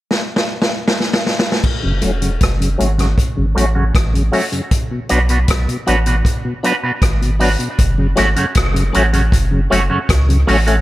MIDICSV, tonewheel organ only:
0, 0, Header, 1, 2, 480
1, 0, Start_track
1, 0, Key_signature, 3, "minor"
1, 0, Tempo, 768246
1, 1023, Time_signature, 4, 2, 24, 8
1, 6756, End_track
2, 0, Start_track
2, 0, Title_t, "Tonewheel organ"
2, 0, Program_c, 0, 16
2, 1144, Note_on_c, 0, 42, 56
2, 1145, Note_on_c, 0, 49, 56
2, 1202, Note_off_c, 0, 42, 0
2, 1202, Note_off_c, 0, 49, 0
2, 1258, Note_on_c, 0, 54, 68
2, 1258, Note_on_c, 0, 57, 61
2, 1262, Note_on_c, 0, 61, 72
2, 1320, Note_off_c, 0, 54, 0
2, 1320, Note_off_c, 0, 57, 0
2, 1322, Note_off_c, 0, 61, 0
2, 1383, Note_on_c, 0, 49, 57
2, 1384, Note_on_c, 0, 42, 58
2, 1442, Note_off_c, 0, 42, 0
2, 1442, Note_off_c, 0, 49, 0
2, 1623, Note_on_c, 0, 42, 57
2, 1623, Note_on_c, 0, 49, 56
2, 1682, Note_off_c, 0, 42, 0
2, 1682, Note_off_c, 0, 49, 0
2, 1736, Note_on_c, 0, 54, 68
2, 1738, Note_on_c, 0, 57, 67
2, 1740, Note_on_c, 0, 61, 74
2, 1799, Note_off_c, 0, 54, 0
2, 1800, Note_off_c, 0, 57, 0
2, 1801, Note_off_c, 0, 61, 0
2, 1861, Note_on_c, 0, 42, 60
2, 1861, Note_on_c, 0, 49, 57
2, 1921, Note_off_c, 0, 42, 0
2, 1921, Note_off_c, 0, 49, 0
2, 2104, Note_on_c, 0, 49, 57
2, 2105, Note_on_c, 0, 42, 61
2, 2163, Note_off_c, 0, 42, 0
2, 2163, Note_off_c, 0, 49, 0
2, 2222, Note_on_c, 0, 54, 67
2, 2224, Note_on_c, 0, 57, 65
2, 2226, Note_on_c, 0, 61, 74
2, 2283, Note_off_c, 0, 54, 0
2, 2284, Note_off_c, 0, 57, 0
2, 2284, Note_off_c, 0, 61, 0
2, 2345, Note_on_c, 0, 42, 53
2, 2345, Note_on_c, 0, 49, 55
2, 2403, Note_off_c, 0, 42, 0
2, 2403, Note_off_c, 0, 49, 0
2, 2586, Note_on_c, 0, 42, 59
2, 2586, Note_on_c, 0, 49, 52
2, 2644, Note_off_c, 0, 42, 0
2, 2644, Note_off_c, 0, 49, 0
2, 2698, Note_on_c, 0, 54, 68
2, 2700, Note_on_c, 0, 57, 62
2, 2703, Note_on_c, 0, 61, 77
2, 2761, Note_off_c, 0, 54, 0
2, 2762, Note_off_c, 0, 57, 0
2, 2763, Note_off_c, 0, 61, 0
2, 2824, Note_on_c, 0, 49, 56
2, 2826, Note_on_c, 0, 42, 53
2, 2883, Note_off_c, 0, 49, 0
2, 2884, Note_off_c, 0, 42, 0
2, 3068, Note_on_c, 0, 47, 60
2, 3125, Note_off_c, 0, 47, 0
2, 3182, Note_on_c, 0, 54, 72
2, 3183, Note_on_c, 0, 59, 61
2, 3185, Note_on_c, 0, 62, 75
2, 3243, Note_off_c, 0, 54, 0
2, 3243, Note_off_c, 0, 59, 0
2, 3244, Note_off_c, 0, 62, 0
2, 3307, Note_on_c, 0, 47, 57
2, 3364, Note_off_c, 0, 47, 0
2, 3550, Note_on_c, 0, 47, 59
2, 3606, Note_off_c, 0, 47, 0
2, 3664, Note_on_c, 0, 54, 69
2, 3666, Note_on_c, 0, 59, 65
2, 3669, Note_on_c, 0, 62, 82
2, 3724, Note_off_c, 0, 54, 0
2, 3725, Note_off_c, 0, 59, 0
2, 3727, Note_off_c, 0, 62, 0
2, 3788, Note_on_c, 0, 47, 57
2, 3845, Note_off_c, 0, 47, 0
2, 4028, Note_on_c, 0, 47, 60
2, 4085, Note_off_c, 0, 47, 0
2, 4143, Note_on_c, 0, 54, 70
2, 4145, Note_on_c, 0, 59, 64
2, 4146, Note_on_c, 0, 62, 79
2, 4204, Note_off_c, 0, 54, 0
2, 4205, Note_off_c, 0, 59, 0
2, 4205, Note_off_c, 0, 62, 0
2, 4266, Note_on_c, 0, 47, 54
2, 4324, Note_off_c, 0, 47, 0
2, 4507, Note_on_c, 0, 47, 55
2, 4565, Note_off_c, 0, 47, 0
2, 4620, Note_on_c, 0, 54, 70
2, 4622, Note_on_c, 0, 59, 60
2, 4625, Note_on_c, 0, 62, 76
2, 4682, Note_off_c, 0, 54, 0
2, 4683, Note_off_c, 0, 59, 0
2, 4685, Note_off_c, 0, 62, 0
2, 4743, Note_on_c, 0, 47, 53
2, 4803, Note_off_c, 0, 47, 0
2, 4986, Note_on_c, 0, 42, 60
2, 4986, Note_on_c, 0, 49, 60
2, 5044, Note_off_c, 0, 42, 0
2, 5044, Note_off_c, 0, 49, 0
2, 5096, Note_on_c, 0, 54, 70
2, 5099, Note_on_c, 0, 57, 67
2, 5100, Note_on_c, 0, 61, 78
2, 5160, Note_off_c, 0, 54, 0
2, 5162, Note_off_c, 0, 57, 0
2, 5162, Note_off_c, 0, 61, 0
2, 5225, Note_on_c, 0, 42, 58
2, 5225, Note_on_c, 0, 49, 55
2, 5284, Note_off_c, 0, 42, 0
2, 5284, Note_off_c, 0, 49, 0
2, 5462, Note_on_c, 0, 42, 61
2, 5462, Note_on_c, 0, 49, 57
2, 5522, Note_off_c, 0, 42, 0
2, 5522, Note_off_c, 0, 49, 0
2, 5578, Note_on_c, 0, 54, 74
2, 5579, Note_on_c, 0, 57, 68
2, 5582, Note_on_c, 0, 61, 81
2, 5641, Note_off_c, 0, 54, 0
2, 5642, Note_off_c, 0, 57, 0
2, 5643, Note_off_c, 0, 61, 0
2, 5705, Note_on_c, 0, 49, 60
2, 5707, Note_on_c, 0, 42, 60
2, 5764, Note_off_c, 0, 49, 0
2, 5765, Note_off_c, 0, 42, 0
2, 5942, Note_on_c, 0, 49, 64
2, 5945, Note_on_c, 0, 42, 62
2, 6002, Note_off_c, 0, 49, 0
2, 6004, Note_off_c, 0, 42, 0
2, 6063, Note_on_c, 0, 54, 70
2, 6065, Note_on_c, 0, 57, 71
2, 6067, Note_on_c, 0, 61, 84
2, 6124, Note_off_c, 0, 54, 0
2, 6124, Note_off_c, 0, 57, 0
2, 6126, Note_off_c, 0, 61, 0
2, 6186, Note_on_c, 0, 42, 60
2, 6188, Note_on_c, 0, 49, 58
2, 6244, Note_off_c, 0, 42, 0
2, 6245, Note_off_c, 0, 49, 0
2, 6427, Note_on_c, 0, 42, 56
2, 6428, Note_on_c, 0, 49, 54
2, 6485, Note_off_c, 0, 42, 0
2, 6485, Note_off_c, 0, 49, 0
2, 6542, Note_on_c, 0, 54, 73
2, 6543, Note_on_c, 0, 57, 72
2, 6547, Note_on_c, 0, 61, 79
2, 6603, Note_off_c, 0, 54, 0
2, 6603, Note_off_c, 0, 57, 0
2, 6605, Note_off_c, 0, 61, 0
2, 6667, Note_on_c, 0, 57, 71
2, 6672, Note_on_c, 0, 61, 75
2, 6724, Note_off_c, 0, 57, 0
2, 6727, Note_off_c, 0, 61, 0
2, 6756, End_track
0, 0, End_of_file